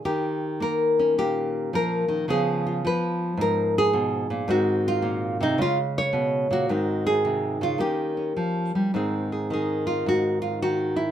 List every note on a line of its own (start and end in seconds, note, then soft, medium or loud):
0.05 1.73 D#3 medium
0.05 0.61 G4 medium
0.60 2.25 A#3 medium
0.60 1.18 A#4 medium
0.99 2.26 C#4 soft
1.18 2.28 A#2 medium
1.18 1.73 G4 medium
1.73 2.08 F3 medium
1.73 2.29 A#4 medium
2.08 2.27 D#3 medium
2.28 2.83 C#3 medium
2.28 2.83 F3 soft
2.28 4.46 B3 soft
2.28 2.65 F4 soft
2.28 2.84 G#4 medium
2.67 4.46 F4 soft
2.85 4.46 F3 medium
2.85 3.39 B4 medium
3.37 4.45 G#2 medium
3.37 3.76 A#4 medium
3.78 4.49 G#4 medium
3.93 4.29 B2 medium
4.30 4.48 A#2 medium
4.48 5.55 G#2 medium
4.48 5.58 D#3 soft
4.48 5.56 C4 soft
4.48 5.41 F#4 medium
4.88 5.59 F4 medium
5.02 5.39 A#2 medium
5.41 5.58 C3 medium
5.41 5.59 D#4 medium
5.58 6.66 C#3 medium
5.58 6.69 G#3 soft
5.58 5.78 F4 medium
5.98 6.70 C#5 medium
6.13 6.50 B2 medium
6.51 6.69 A#2 medium
6.51 7.63 F#4 medium
6.69 7.79 G#2 medium
6.69 7.77 D#3 soft
6.69 7.79 C4 soft
7.07 7.62 G#4 medium
7.25 7.61 C3 medium
7.61 7.80 C#3 medium
7.61 7.80 F4 medium
7.78 8.36 D#3 medium
7.78 8.92 A#3 soft
7.78 8.16 C#4 soft
7.78 8.95 G4 medium
8.17 8.92 C#4 soft
8.37 8.75 F3 medium
8.75 8.94 G3 medium
8.94 10.05 G#2 medium
8.94 9.49 D#3 soft
8.94 11.11 C4 soft
8.94 9.32 G#4 soft
9.32 9.53 G#4 soft
9.50 10.62 D#3 medium
9.50 9.86 G#4 medium
9.87 10.06 F4 medium
10.06 11.11 G#2 soft
10.06 10.41 F#4 medium
10.42 10.62 F4 medium
10.62 11.11 D#3 medium
10.62 10.99 F#4 medium
10.96 11.11 E4 medium